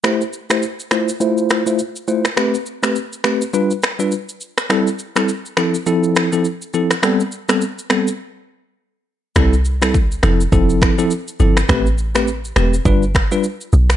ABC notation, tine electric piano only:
X:1
M:4/4
L:1/16
Q:"Swing 16ths" 1/4=103
K:C
V:1 name="Tine electric piano"
[A,EGc] z2 [A,EGc] z2 [A,EFc] z [A,EFc]3 [A,EFc] z2 [A,EFc] z | [A,CGB] z2 [A,CGB] z2 [A,CGB] z [G,DFB] z2 [G,DFB] z4 | [G,CEA] z2 [G,CEA] z2 [F,CEA] z [F,CEA]3 [F,CEA] z2 [F,CEA] z | [G,B,CA] z2 [G,B,CA] z2 [G,B,CA] z8 z |
[G,CEA] z2 [G,CEA] z2 [F,CEA] z [F,CEA]3 [F,CEA] z2 [F,CEA] z | [A,CGB] z2 [A,CGB] z2 [A,CGB] z [G,DFB] z2 [G,DFB] z4 |]